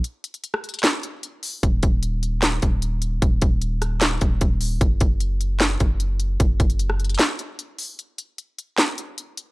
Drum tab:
HH |x---x-x-x---xxxxx---x---x---o---|x---x---x---x---x---x---x---x---|x---x---x---x---x---x---x---o---|x---x---x---x---x---x---x---x---|
CP |----------------x---------------|----------------x---------------|----------------x---------------|----------------x---------------|
SD |----------r-----o---------------|----------------o---------------|------------r---o---------------|----------------o---------------|
BD |--------------------------------|o---o---------------o-----------|o---o---------------o---o-------|o---o---------------o-----------|

HH |x---x-x-x---xxxxx---x---x---o---|x---x---x---x---x---x---x---x---|
CP |----------------x---------------|----------------x---------------|
SD |----------r-----o---------------|----------------o---------------|
BD |o---o---------------------------|--------------------------------|